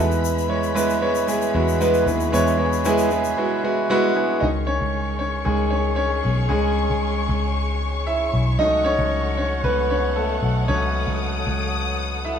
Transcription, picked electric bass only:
0.00 1.51 E2 medium
1.55 2.03 E2 medium
2.06 2.31 D#2 medium
2.34 3.34 E2 medium
4.43 4.79 C#2 loud
4.81 5.43 C#2 medium
5.46 6.21 C#2 loud
6.25 6.49 B1 medium
6.51 6.87 C#2 loud
6.90 7.26 C#2 medium
7.29 8.29 C#2 loud
8.34 8.59 B1 medium
8.59 8.96 C#2 loud
8.99 9.61 C#2 loud
9.64 10.38 C#2 loud
10.43 10.66 B1 medium
10.69 11.05 C#2 loud
11.07 11.43 C#2 medium
11.47 12.39 C#2 loud

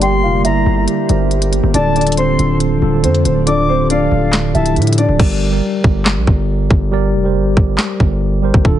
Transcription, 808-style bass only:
0.00 0.25 G1 loud
0.23 0.46 F1 loud
0.45 0.65 G1 loud
0.66 0.87 G1 loud
1.09 1.61 G1 loud
1.63 1.74 G1 loud
1.74 2.36 D1 loud
2.39 2.80 D1 loud
2.82 3.05 D1 loud
3.04 3.24 F2 loud
3.25 4.08 D1 loud
4.12 4.53 D1 loud
4.55 4.78 D1 loud
4.76 5.07 A2 medium
5.09 5.19 D1 loud
5.20 5.61 G1 loud
5.84 6.18 G1 loud
6.17 6.27 A#1 loud
6.27 6.69 G1 loud
6.71 7.15 G1 loud
7.14 7.37 F1 loud
7.35 7.56 G1 loud
7.57 7.78 G1 loud
8.00 8.52 G1 loud
8.54 8.64 G1 loud
8.65 8.79 D1 loud

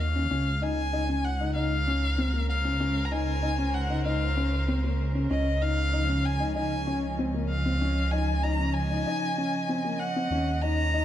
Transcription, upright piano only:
0.15 0.23 C#4 medium
0.31 0.47 C#4 loud
0.62 0.78 D#4 medium
0.93 1.01 D#4 medium
1.09 1.25 C#4 medium
1.40 1.49 D#4 medium
1.56 1.72 D#4 medium
1.87 2.04 C#4 medium
2.18 2.26 C4 medium
2.33 2.50 A#3 medium
2.65 2.73 C#4 medium
2.80 2.97 C#4 loud
3.12 3.28 D#4 medium
3.43 3.51 D#4 medium
3.58 3.75 C#4 medium
3.90 3.98 D#4 medium
4.06 4.22 D#4 medium
4.37 4.53 C#4 medium
4.68 4.76 C4 medium
4.84 5.00 A#3 medium
5.15 5.23 C#4 medium
5.31 5.47 C#4 loud
5.62 5.78 D#4 medium
5.93 6.01 D#4 medium
6.09 6.26 C#4 medium
6.40 6.48 D#4 medium
6.55 6.72 D#4 medium
6.87 7.04 C#4 medium
7.19 7.27 C4 medium
7.34 7.51 A#3 medium
7.66 7.74 C4 medium
7.81 7.98 C#4 loud
8.13 8.29 D#4 medium
8.44 8.52 D#4 medium
8.60 8.76 C#4 medium
8.91 8.99 D#4 medium
9.06 9.23 D#4 medium
9.38 9.54 C#4 medium
9.69 9.77 C4 medium
9.85 10.01 A#3 medium
10.16 10.24 C4 medium
10.32 10.48 C#4 loud
10.63 10.79 D#4 medium
10.94 11.02 D#4 medium

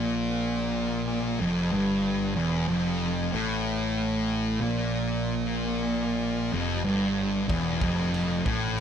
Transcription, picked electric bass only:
0.00 1.37 A#1 loud
1.41 1.71 F1 medium
1.73 2.33 G1 loud
2.38 2.67 E1 loud
2.68 3.28 F1 medium
3.33 4.57 A1 medium
4.61 6.49 A#1 loud
6.53 6.83 F1 medium
6.86 7.45 G1 medium
7.49 7.79 E1 loud
7.82 8.42 F1 medium
8.46 8.80 A1 loud

